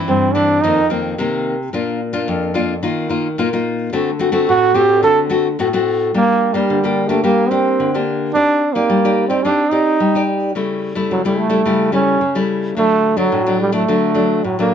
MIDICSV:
0, 0, Header, 1, 3, 480
1, 0, Start_track
1, 0, Key_signature, -2, "minor"
1, 0, Tempo, 551978
1, 1510, Time_signature, 4, 2, 24, 8
1, 12820, End_track
2, 0, Start_track
2, 0, Title_t, "Nylon-string guitar"
2, 0, Program_c, 0, 24
2, 0, Note_on_c, 0, 52, 65
2, 0, Note_on_c, 0, 60, 58
2, 0, Note_on_c, 0, 64, 74
2, 69, Note_on_c, 0, 43, 72
2, 264, Note_off_c, 0, 52, 0
2, 267, Note_off_c, 0, 60, 0
2, 269, Note_off_c, 0, 64, 0
2, 303, Note_on_c, 0, 52, 61
2, 307, Note_on_c, 0, 60, 58
2, 312, Note_on_c, 0, 64, 64
2, 526, Note_off_c, 0, 43, 0
2, 528, Note_off_c, 0, 52, 0
2, 530, Note_off_c, 0, 60, 0
2, 532, Note_off_c, 0, 64, 0
2, 552, Note_on_c, 0, 51, 62
2, 555, Note_on_c, 0, 41, 72
2, 560, Note_on_c, 0, 58, 59
2, 561, Note_on_c, 0, 60, 64
2, 693, Note_off_c, 0, 51, 0
2, 696, Note_off_c, 0, 58, 0
2, 697, Note_off_c, 0, 60, 0
2, 782, Note_on_c, 0, 51, 58
2, 787, Note_on_c, 0, 58, 59
2, 792, Note_on_c, 0, 60, 58
2, 988, Note_off_c, 0, 51, 0
2, 989, Note_off_c, 0, 58, 0
2, 992, Note_off_c, 0, 60, 0
2, 1009, Note_off_c, 0, 41, 0
2, 1029, Note_on_c, 0, 48, 76
2, 1034, Note_on_c, 0, 51, 62
2, 1042, Note_on_c, 0, 58, 65
2, 1043, Note_on_c, 0, 60, 67
2, 1340, Note_off_c, 0, 51, 0
2, 1341, Note_off_c, 0, 58, 0
2, 1345, Note_off_c, 0, 60, 0
2, 1486, Note_off_c, 0, 48, 0
2, 1504, Note_on_c, 0, 46, 65
2, 1508, Note_on_c, 0, 58, 58
2, 1514, Note_on_c, 0, 62, 56
2, 1515, Note_on_c, 0, 65, 68
2, 1734, Note_off_c, 0, 58, 0
2, 1735, Note_off_c, 0, 62, 0
2, 1737, Note_off_c, 0, 65, 0
2, 1851, Note_on_c, 0, 58, 71
2, 1856, Note_on_c, 0, 62, 62
2, 1858, Note_on_c, 0, 65, 74
2, 1961, Note_off_c, 0, 46, 0
2, 1982, Note_on_c, 0, 41, 83
2, 2181, Note_off_c, 0, 58, 0
2, 2181, Note_off_c, 0, 62, 0
2, 2184, Note_off_c, 0, 65, 0
2, 2210, Note_on_c, 0, 58, 68
2, 2216, Note_on_c, 0, 62, 61
2, 2220, Note_on_c, 0, 65, 71
2, 2372, Note_off_c, 0, 58, 0
2, 2376, Note_off_c, 0, 62, 0
2, 2377, Note_off_c, 0, 65, 0
2, 2439, Note_off_c, 0, 41, 0
2, 2458, Note_on_c, 0, 51, 70
2, 2459, Note_on_c, 0, 58, 65
2, 2464, Note_on_c, 0, 63, 60
2, 2467, Note_on_c, 0, 65, 66
2, 2663, Note_off_c, 0, 58, 0
2, 2667, Note_off_c, 0, 63, 0
2, 2667, Note_off_c, 0, 65, 0
2, 2691, Note_on_c, 0, 58, 59
2, 2697, Note_on_c, 0, 63, 59
2, 2698, Note_on_c, 0, 65, 65
2, 2839, Note_off_c, 0, 58, 0
2, 2841, Note_off_c, 0, 63, 0
2, 2843, Note_off_c, 0, 65, 0
2, 2917, Note_off_c, 0, 51, 0
2, 2941, Note_on_c, 0, 46, 76
2, 2944, Note_on_c, 0, 58, 63
2, 2946, Note_on_c, 0, 63, 61
2, 2950, Note_on_c, 0, 65, 72
2, 3025, Note_off_c, 0, 58, 0
2, 3027, Note_off_c, 0, 63, 0
2, 3027, Note_off_c, 0, 65, 0
2, 3070, Note_on_c, 0, 58, 63
2, 3074, Note_on_c, 0, 63, 66
2, 3075, Note_on_c, 0, 65, 71
2, 3388, Note_off_c, 0, 58, 0
2, 3389, Note_off_c, 0, 63, 0
2, 3390, Note_off_c, 0, 65, 0
2, 3397, Note_off_c, 0, 46, 0
2, 3414, Note_on_c, 0, 50, 61
2, 3418, Note_on_c, 0, 57, 60
2, 3420, Note_on_c, 0, 66, 64
2, 3421, Note_on_c, 0, 60, 58
2, 3561, Note_off_c, 0, 57, 0
2, 3561, Note_off_c, 0, 60, 0
2, 3562, Note_off_c, 0, 66, 0
2, 3646, Note_on_c, 0, 57, 59
2, 3652, Note_on_c, 0, 60, 59
2, 3657, Note_on_c, 0, 66, 66
2, 3736, Note_off_c, 0, 57, 0
2, 3739, Note_off_c, 0, 60, 0
2, 3741, Note_off_c, 0, 66, 0
2, 3756, Note_on_c, 0, 57, 72
2, 3760, Note_on_c, 0, 60, 65
2, 3765, Note_on_c, 0, 66, 78
2, 3874, Note_off_c, 0, 50, 0
2, 3903, Note_on_c, 0, 45, 79
2, 4090, Note_off_c, 0, 57, 0
2, 4092, Note_off_c, 0, 60, 0
2, 4094, Note_off_c, 0, 66, 0
2, 4125, Note_on_c, 0, 57, 55
2, 4131, Note_on_c, 0, 60, 70
2, 4132, Note_on_c, 0, 66, 65
2, 4357, Note_off_c, 0, 45, 0
2, 4371, Note_on_c, 0, 50, 75
2, 4574, Note_off_c, 0, 57, 0
2, 4576, Note_off_c, 0, 60, 0
2, 4578, Note_off_c, 0, 66, 0
2, 4605, Note_on_c, 0, 57, 60
2, 4610, Note_on_c, 0, 60, 65
2, 4615, Note_on_c, 0, 66, 69
2, 4753, Note_off_c, 0, 57, 0
2, 4757, Note_off_c, 0, 60, 0
2, 4758, Note_off_c, 0, 66, 0
2, 4831, Note_off_c, 0, 50, 0
2, 4860, Note_on_c, 0, 45, 79
2, 4866, Note_on_c, 0, 60, 61
2, 4867, Note_on_c, 0, 57, 56
2, 4869, Note_on_c, 0, 66, 70
2, 4934, Note_off_c, 0, 57, 0
2, 4935, Note_off_c, 0, 60, 0
2, 4937, Note_off_c, 0, 66, 0
2, 4985, Note_on_c, 0, 57, 73
2, 4990, Note_on_c, 0, 60, 68
2, 4994, Note_on_c, 0, 66, 83
2, 5304, Note_off_c, 0, 57, 0
2, 5306, Note_off_c, 0, 60, 0
2, 5308, Note_off_c, 0, 66, 0
2, 5316, Note_off_c, 0, 45, 0
2, 5342, Note_on_c, 0, 55, 63
2, 5343, Note_on_c, 0, 58, 48
2, 5346, Note_on_c, 0, 62, 46
2, 5352, Note_on_c, 0, 67, 55
2, 5662, Note_off_c, 0, 58, 0
2, 5665, Note_off_c, 0, 62, 0
2, 5666, Note_off_c, 0, 67, 0
2, 5687, Note_on_c, 0, 58, 61
2, 5694, Note_on_c, 0, 62, 54
2, 5697, Note_on_c, 0, 67, 73
2, 5797, Note_off_c, 0, 55, 0
2, 5827, Note_on_c, 0, 50, 67
2, 5895, Note_off_c, 0, 58, 0
2, 5899, Note_off_c, 0, 62, 0
2, 5899, Note_off_c, 0, 67, 0
2, 5944, Note_on_c, 0, 58, 60
2, 5950, Note_on_c, 0, 62, 59
2, 5956, Note_on_c, 0, 67, 75
2, 6143, Note_off_c, 0, 58, 0
2, 6146, Note_off_c, 0, 62, 0
2, 6149, Note_off_c, 0, 67, 0
2, 6166, Note_on_c, 0, 58, 70
2, 6171, Note_on_c, 0, 62, 58
2, 6175, Note_on_c, 0, 67, 65
2, 6254, Note_off_c, 0, 58, 0
2, 6257, Note_off_c, 0, 62, 0
2, 6259, Note_off_c, 0, 67, 0
2, 6279, Note_off_c, 0, 50, 0
2, 6292, Note_on_c, 0, 55, 65
2, 6294, Note_on_c, 0, 58, 60
2, 6299, Note_on_c, 0, 62, 59
2, 6300, Note_on_c, 0, 67, 66
2, 6498, Note_off_c, 0, 58, 0
2, 6498, Note_off_c, 0, 62, 0
2, 6501, Note_off_c, 0, 67, 0
2, 6529, Note_on_c, 0, 58, 49
2, 6533, Note_on_c, 0, 62, 53
2, 6536, Note_on_c, 0, 67, 62
2, 6753, Note_off_c, 0, 55, 0
2, 6780, Note_on_c, 0, 50, 68
2, 6856, Note_off_c, 0, 58, 0
2, 6858, Note_off_c, 0, 62, 0
2, 6859, Note_off_c, 0, 67, 0
2, 6908, Note_on_c, 0, 58, 53
2, 6911, Note_on_c, 0, 62, 64
2, 6915, Note_on_c, 0, 67, 68
2, 7226, Note_off_c, 0, 58, 0
2, 7227, Note_off_c, 0, 62, 0
2, 7229, Note_off_c, 0, 67, 0
2, 7236, Note_off_c, 0, 50, 0
2, 7262, Note_on_c, 0, 60, 63
2, 7262, Note_on_c, 0, 63, 54
2, 7266, Note_on_c, 0, 67, 45
2, 7269, Note_on_c, 0, 74, 52
2, 7486, Note_off_c, 0, 63, 0
2, 7488, Note_off_c, 0, 67, 0
2, 7490, Note_off_c, 0, 74, 0
2, 7611, Note_on_c, 0, 63, 63
2, 7616, Note_on_c, 0, 67, 57
2, 7616, Note_on_c, 0, 74, 65
2, 7717, Note_off_c, 0, 60, 0
2, 7735, Note_on_c, 0, 55, 74
2, 7818, Note_off_c, 0, 63, 0
2, 7818, Note_off_c, 0, 67, 0
2, 7820, Note_off_c, 0, 74, 0
2, 7868, Note_on_c, 0, 63, 64
2, 7869, Note_on_c, 0, 67, 62
2, 7874, Note_on_c, 0, 74, 63
2, 8066, Note_off_c, 0, 67, 0
2, 8067, Note_off_c, 0, 63, 0
2, 8069, Note_off_c, 0, 74, 0
2, 8083, Note_on_c, 0, 63, 57
2, 8086, Note_on_c, 0, 67, 62
2, 8092, Note_on_c, 0, 74, 66
2, 8174, Note_off_c, 0, 63, 0
2, 8175, Note_off_c, 0, 67, 0
2, 8178, Note_off_c, 0, 74, 0
2, 8194, Note_off_c, 0, 55, 0
2, 8215, Note_on_c, 0, 60, 72
2, 8220, Note_on_c, 0, 63, 56
2, 8224, Note_on_c, 0, 67, 59
2, 8225, Note_on_c, 0, 74, 63
2, 8361, Note_off_c, 0, 63, 0
2, 8362, Note_off_c, 0, 67, 0
2, 8364, Note_off_c, 0, 74, 0
2, 8447, Note_on_c, 0, 63, 56
2, 8453, Note_on_c, 0, 67, 49
2, 8456, Note_on_c, 0, 74, 58
2, 8675, Note_off_c, 0, 60, 0
2, 8680, Note_off_c, 0, 63, 0
2, 8681, Note_off_c, 0, 67, 0
2, 8684, Note_off_c, 0, 74, 0
2, 8698, Note_on_c, 0, 55, 73
2, 8827, Note_on_c, 0, 63, 62
2, 8834, Note_on_c, 0, 67, 64
2, 8840, Note_on_c, 0, 74, 64
2, 9147, Note_off_c, 0, 63, 0
2, 9150, Note_off_c, 0, 67, 0
2, 9153, Note_off_c, 0, 74, 0
2, 9157, Note_off_c, 0, 55, 0
2, 9175, Note_on_c, 0, 49, 65
2, 9180, Note_on_c, 0, 55, 47
2, 9181, Note_on_c, 0, 57, 53
2, 9187, Note_on_c, 0, 64, 54
2, 9502, Note_off_c, 0, 55, 0
2, 9504, Note_off_c, 0, 57, 0
2, 9506, Note_off_c, 0, 64, 0
2, 9525, Note_on_c, 0, 55, 64
2, 9530, Note_on_c, 0, 57, 59
2, 9533, Note_on_c, 0, 64, 69
2, 9636, Note_off_c, 0, 49, 0
2, 9662, Note_on_c, 0, 49, 73
2, 9736, Note_off_c, 0, 55, 0
2, 9738, Note_off_c, 0, 57, 0
2, 9740, Note_off_c, 0, 64, 0
2, 9782, Note_on_c, 0, 55, 55
2, 9787, Note_on_c, 0, 57, 63
2, 9789, Note_on_c, 0, 64, 71
2, 9985, Note_off_c, 0, 55, 0
2, 9987, Note_off_c, 0, 57, 0
2, 9988, Note_off_c, 0, 64, 0
2, 9996, Note_on_c, 0, 55, 62
2, 9999, Note_on_c, 0, 57, 61
2, 10004, Note_on_c, 0, 64, 71
2, 10092, Note_off_c, 0, 55, 0
2, 10094, Note_off_c, 0, 57, 0
2, 10094, Note_off_c, 0, 64, 0
2, 10119, Note_off_c, 0, 49, 0
2, 10135, Note_on_c, 0, 49, 72
2, 10138, Note_on_c, 0, 55, 57
2, 10140, Note_on_c, 0, 57, 58
2, 10146, Note_on_c, 0, 64, 64
2, 10342, Note_off_c, 0, 55, 0
2, 10345, Note_off_c, 0, 57, 0
2, 10346, Note_off_c, 0, 64, 0
2, 10367, Note_on_c, 0, 55, 59
2, 10372, Note_on_c, 0, 57, 53
2, 10376, Note_on_c, 0, 64, 61
2, 10597, Note_off_c, 0, 49, 0
2, 10602, Note_off_c, 0, 55, 0
2, 10604, Note_off_c, 0, 57, 0
2, 10606, Note_off_c, 0, 64, 0
2, 10617, Note_on_c, 0, 49, 69
2, 10740, Note_on_c, 0, 55, 59
2, 10745, Note_on_c, 0, 57, 69
2, 10750, Note_on_c, 0, 64, 70
2, 11065, Note_off_c, 0, 55, 0
2, 11068, Note_off_c, 0, 57, 0
2, 11069, Note_off_c, 0, 64, 0
2, 11078, Note_off_c, 0, 49, 0
2, 11101, Note_on_c, 0, 50, 69
2, 11106, Note_on_c, 0, 54, 52
2, 11110, Note_on_c, 0, 62, 52
2, 11113, Note_on_c, 0, 57, 51
2, 11428, Note_off_c, 0, 54, 0
2, 11429, Note_off_c, 0, 57, 0
2, 11431, Note_off_c, 0, 62, 0
2, 11449, Note_on_c, 0, 54, 59
2, 11454, Note_on_c, 0, 57, 58
2, 11459, Note_on_c, 0, 62, 67
2, 11562, Note_off_c, 0, 50, 0
2, 11584, Note_on_c, 0, 45, 72
2, 11661, Note_off_c, 0, 54, 0
2, 11663, Note_off_c, 0, 57, 0
2, 11665, Note_off_c, 0, 62, 0
2, 11709, Note_on_c, 0, 54, 65
2, 11713, Note_on_c, 0, 57, 55
2, 11717, Note_on_c, 0, 62, 60
2, 11911, Note_off_c, 0, 54, 0
2, 11912, Note_off_c, 0, 57, 0
2, 11915, Note_off_c, 0, 62, 0
2, 11934, Note_on_c, 0, 54, 67
2, 11937, Note_on_c, 0, 57, 68
2, 11940, Note_on_c, 0, 62, 70
2, 12023, Note_off_c, 0, 54, 0
2, 12024, Note_off_c, 0, 57, 0
2, 12026, Note_off_c, 0, 62, 0
2, 12043, Note_off_c, 0, 45, 0
2, 12073, Note_on_c, 0, 54, 52
2, 12075, Note_on_c, 0, 50, 67
2, 12077, Note_on_c, 0, 57, 52
2, 12081, Note_on_c, 0, 62, 54
2, 12273, Note_off_c, 0, 54, 0
2, 12276, Note_off_c, 0, 57, 0
2, 12277, Note_off_c, 0, 62, 0
2, 12299, Note_on_c, 0, 54, 53
2, 12303, Note_on_c, 0, 57, 53
2, 12308, Note_on_c, 0, 62, 54
2, 12530, Note_off_c, 0, 50, 0
2, 12531, Note_off_c, 0, 54, 0
2, 12532, Note_off_c, 0, 57, 0
2, 12535, Note_off_c, 0, 62, 0
2, 12560, Note_on_c, 0, 45, 66
2, 12686, Note_on_c, 0, 54, 60
2, 12690, Note_on_c, 0, 57, 65
2, 12696, Note_on_c, 0, 62, 65
2, 12820, Note_off_c, 0, 45, 0
2, 12820, Note_off_c, 0, 54, 0
2, 12820, Note_off_c, 0, 57, 0
2, 12820, Note_off_c, 0, 62, 0
2, 12820, End_track
3, 0, Start_track
3, 0, Title_t, "Trombone"
3, 0, Program_c, 1, 57
3, 70, Note_on_c, 1, 60, 87
3, 293, Note_on_c, 1, 62, 86
3, 306, Note_off_c, 1, 60, 0
3, 539, Note_on_c, 1, 63, 91
3, 553, Note_off_c, 1, 62, 0
3, 785, Note_off_c, 1, 63, 0
3, 3898, Note_on_c, 1, 66, 103
3, 4128, Note_on_c, 1, 67, 96
3, 4141, Note_off_c, 1, 66, 0
3, 4374, Note_off_c, 1, 67, 0
3, 4379, Note_on_c, 1, 69, 96
3, 4523, Note_off_c, 1, 69, 0
3, 5358, Note_on_c, 1, 58, 97
3, 5683, Note_on_c, 1, 55, 82
3, 5696, Note_off_c, 1, 58, 0
3, 6166, Note_on_c, 1, 57, 74
3, 6179, Note_off_c, 1, 55, 0
3, 6293, Note_on_c, 1, 58, 83
3, 6306, Note_off_c, 1, 57, 0
3, 6513, Note_on_c, 1, 60, 87
3, 6527, Note_off_c, 1, 58, 0
3, 7007, Note_off_c, 1, 60, 0
3, 7244, Note_on_c, 1, 62, 101
3, 7591, Note_on_c, 1, 58, 84
3, 7604, Note_off_c, 1, 62, 0
3, 8061, Note_off_c, 1, 58, 0
3, 8066, Note_on_c, 1, 60, 82
3, 8205, Note_on_c, 1, 62, 91
3, 8218, Note_off_c, 1, 60, 0
3, 8442, Note_on_c, 1, 63, 87
3, 8455, Note_off_c, 1, 62, 0
3, 8932, Note_off_c, 1, 63, 0
3, 9663, Note_on_c, 1, 54, 82
3, 9775, Note_off_c, 1, 54, 0
3, 9779, Note_on_c, 1, 55, 77
3, 9895, Note_on_c, 1, 57, 92
3, 9908, Note_off_c, 1, 55, 0
3, 10369, Note_off_c, 1, 57, 0
3, 10374, Note_on_c, 1, 61, 83
3, 10827, Note_off_c, 1, 61, 0
3, 11107, Note_on_c, 1, 57, 98
3, 11456, Note_on_c, 1, 54, 81
3, 11469, Note_off_c, 1, 57, 0
3, 11822, Note_off_c, 1, 54, 0
3, 11830, Note_on_c, 1, 55, 84
3, 11944, Note_on_c, 1, 57, 81
3, 11957, Note_off_c, 1, 55, 0
3, 12556, Note_on_c, 1, 54, 70
3, 12569, Note_off_c, 1, 57, 0
3, 12674, Note_off_c, 1, 54, 0
3, 12689, Note_on_c, 1, 58, 73
3, 12820, Note_off_c, 1, 58, 0
3, 12820, End_track
0, 0, End_of_file